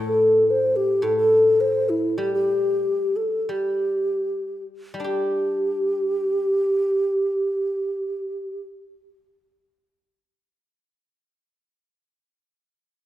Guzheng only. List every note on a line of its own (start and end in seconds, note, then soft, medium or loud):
0.00 1.01 A2 medium
0.00 0.47 E3 soft
1.02 2.82 A2 soft
2.18 3.48 G3 medium
3.49 4.93 G3 soft
4.94 11.00 G3 soft
5.00 9.76 D4 soft
5.04 9.05 G4 soft